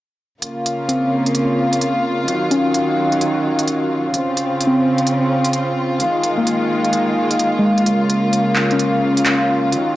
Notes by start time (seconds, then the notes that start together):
0.42 C#3 A#3 F4, closed hi-hat
0.66 closed hi-hat
0.88 C4, closed hi-hat
1.26 closed hi-hat
1.35 closed hi-hat
1.73 closed hi-hat
1.81 closed hi-hat
2.27 D#3 F#3, closed hi-hat
2.51 C#4, closed hi-hat
2.74 closed hi-hat
3.12 closed hi-hat
3.21 closed hi-hat
3.59 closed hi-hat
3.68 closed hi-hat
4.14 C#3 C4 F4, closed hi-hat
4.37 closed hi-hat
4.61 closed hi-hat
4.67 C4
4.98 closed hi-hat
5.07 closed hi-hat
5.45 closed hi-hat
5.53 closed hi-hat
6.00 D#3 G#3, closed hi-hat
6.24 closed hi-hat
6.38 A#3
6.47 closed hi-hat
6.84 closed hi-hat
6.93 closed hi-hat
7.31 closed hi-hat
7.39 closed hi-hat
7.59 G#3
7.78 closed hi-hat
7.86 C#3 A#3, closed hi-hat
8.10 closed hi-hat
8.33 closed hi-hat
8.56 clap
8.71 C#4, closed hi-hat
8.79 closed hi-hat
9.17 closed hi-hat
9.26 clap, closed hi-hat
9.72 D#3 F#3, closed hi-hat